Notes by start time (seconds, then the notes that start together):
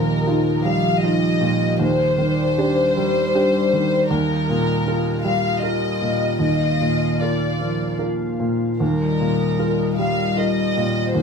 Already playing: D#2 A#2 F3 G4 A#4 D#5
0.27 D#4 F4
0.63 G3 F5
1.02 D#4 F4 D#5
1.41 A#2
1.79 D#2 G3 C5 D5
2.18 D#3
2.58 D4 G4
2.97 G3
3.35 D4 G4
3.73 D#3
4.08 D#2 F4 A#4 D#5
4.50 A#2
4.87 F4 A#4
5.23 G3 F5
5.61 F4 A#4 D#5
6.02 A#2
6.38 D#2 A#3 D#5 F5
6.81 A#2
7.21 F4 A#4 D5
7.60 F3
7.99 F4 A#4
8.40 A#2
8.80 D#2 G3 F4 A#4 D#5
9.20 A#2
9.59 F4 A#4
9.99 G3 F5
10.37 F4 A#4 D#5
10.77 A#2
11.14 D#2 G4 C5 D5